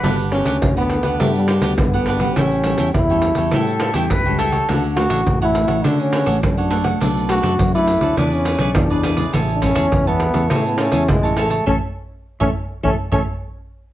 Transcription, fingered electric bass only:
X:1
M:4/4
L:1/16
Q:1/4=103
K:A
V:1 name="Fingered electric bass" clef=bass
=G,,,3 D,, D,,3 D,, =G,,3 D,, G,,,4 | A,,,3 E,, E,,3 E,, A,,3 E,, C,,4 | D,,3 A,,, A,,,3 A,,, D,3 A,,, F,,4 | B,,,3 F,, F,,3 D,, E,,3 B,,, E,,4 |
A,,,3 E,, E,,3 E,, A,,3 E,, A,,,4 | A,,, z4 A,,, z2 A,,, z A,,, z4 z |]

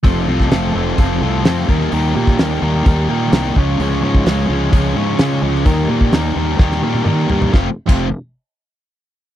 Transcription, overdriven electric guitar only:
X:1
M:4/4
L:1/16
Q:1/4=128
K:Fmix
V:1 name="Overdriven electric guitar"
[F,A,CFA]2 [F,A,CFA]2 [F,A,CFA]2 [F,A,CFA]2 [F,A,CFA]2 [F,A,CFA]2 [F,A,CFA]2 [E,G,B,GB]2 | [E,G,B,GB]2 [E,G,B,GB]2 [E,G,B,GB]2 [E,G,B,GB]2 [E,G,B,GB]2 [E,G,B,GB]2 [E,G,B,GB]2 [_D,F,_A,_DF_d]2 | [_D,F,_A,_DF_d]2 [D,F,A,DFd]2 [D,F,A,DFd]2 [D,F,A,DFd]2 [D,F,A,DFd]2 [D,F,A,DFd]2 [D,F,A,DFd]2 [D,F,A,DFd]2 | [E,G,B,GB]2 [E,G,B,GB]2 [E,G,B,GB]2 [E,G,B,GB]2 [E,G,B,GB]2 [E,G,B,GB]2 [E,G,B,GB]2 [E,G,B,GB]2 |
[F,,C,F,A,CF] z2 [F,,C,F,A,CF]2 z8 z3 |]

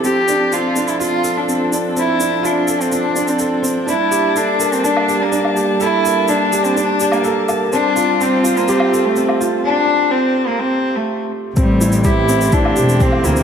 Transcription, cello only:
X:1
M:4/4
L:1/16
Q:1/4=125
K:Dm
V:1 name="Cello"
G4 F3 E F3 D2 z3 | E4 D3 C D3 C2 z3 | E4 D3 C D3 B,2 z3 | E4 D3 C D3 B,2 z3 |
D4 C3 B, C3 A,2 z3 | D4 C3 B, C3 A,2 z3 | G,4 E4 D4 C2 B,2 |]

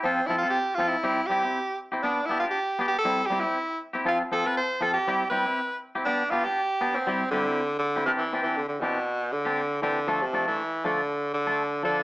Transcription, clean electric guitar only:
X:1
M:4/4
L:1/16
Q:"Swing 16ths" 1/4=120
K:C
V:1 name="Clean electric guitar"
[F,CFA] z [F,CFA] [CFA] z2 [F,CFA] z [G,CEG] z [G,CEG] [CEG] z3 [CEG] | [B,D] z [B,DG] [DG] z2 [B,DG] z [G,CE] z [G,CEG] [CEG] z3 [CEG] | [F,CFA] z [F,CF] [CFA] z2 [F,CFA] z [G,CEG] z [G,CEG] [CEG] z3 [CEG] | [B,DG] z [B,DG] [DG] z2 [B,DG] z [G,CEG] z [G,CEG] [CEG] z3 [CEG] |
[E,CDG] z [E,CDG] [CDG] z2 [E,CDG] z4 [CDG] z2 [E,CDG] z | [F,A,DA] z [F,A,DA] [A,DA] z2 [F,A,DA] z4 [A,DA] z2 [F,DA] z |]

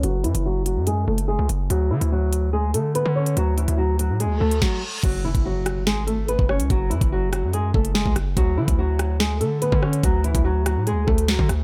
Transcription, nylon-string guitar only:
X:1
M:4/4
L:1/8
Q:1/4=144
K:F#m
V:1 name="Nylon-string guitar"
[F,F] [E,E] [F,F] [F,F] [G,G] [A,A] [G,G] z | [F,F] [E,E] [F,F]2 [G,G] [A,A] [B,B] [Cc] | [F,F] [E,E] [F,F] [F,F] [G,G] [A,A] [F,F] z | [F,F] [E,E] [F,F]2 [G,G] [A,A] [B,B] [Cc] |
[F,F] [E,E] [F,F] [F,F] [G,G] [A,A] [G,G] z | [F,F] [E,E] [F,F]2 [G,G] [A,A] [B,B] [Cc] | [F,F] [E,E] [F,F] [F,F] [G,G] [A,A] [F,F] z |]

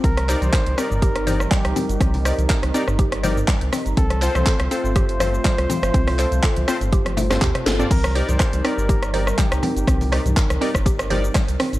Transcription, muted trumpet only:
X:1
M:4/4
L:1/16
Q:"Swing 16ths" 1/4=122
K:Cdor
V:1 name="Muted trumpet"
B3 c3 B6 G3 G- | G3 z12 z | A3 c3 c8- c2- | c12 z4 |
B3 c3 B4 B2 G3 G- | G3 z12 z |]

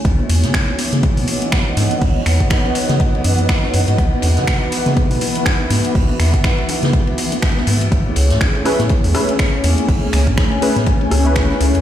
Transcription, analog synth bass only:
X:1
M:4/4
L:1/16
Q:"Swing 16ths" 1/4=122
K:C#m
V:1 name="Analog synth bass" clef=bass
C,, z E,, C, z3 C,2 B,, z4 G,, z | C,, z E,, C, z3 C,2 z F,,3 z F,, G,, | C,, z E,, C, z3 C,2 B,, z4 G,, z | C,, z E,, C, z3 C,2 z4 z G,,2 |
A,,, z C,, A,, z3 A,,2 E,, z4 E,, z | A,,, z C,, A,, z3 A,,2 z C,,3 z C,, E,, |]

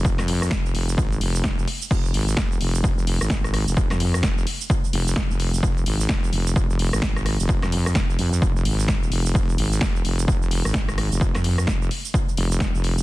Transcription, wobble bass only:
X:1
M:4/4
L:1/16
Q:"Swing 16ths" 1/4=129
K:Fm
V:1 name="Wobble bass" clef=bass
F,,, F,,3 F,,,2 F,,,2 A,,,2 F,,,3 F,,, z2 | F,,,2 A,,,2 F,,,2 F,,,2 F,,,3 A,,, A,,,3 F,,,- | F,,, F,,3 F,,,2 z4 F,,,3 F,,,3 | F,,,2 A,,,2 F,,,2 F,,,2 F,,,3 A,,, A,,,3 F,,,- |
F,,, F,,3 F,,,2 F,,2 F,,,2 A,,,4 F,,,2 | F,,,2 A,,,2 F,,,2 F,,,2 F,,,3 A,,, A,,,3 F,,,- | F,,, F,,3 F,,,2 z4 F,,,3 F,,,3 |]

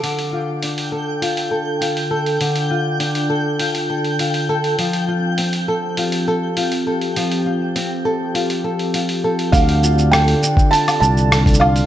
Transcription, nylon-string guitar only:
X:1
M:4/4
L:1/8
Q:1/4=101
K:Dm
V:1 name="Nylon-string guitar"
D, F D A F A F A | D, F D A F A F A | F, F C A F A F A | F, F C A F A F A |
D, F A D F D A F |]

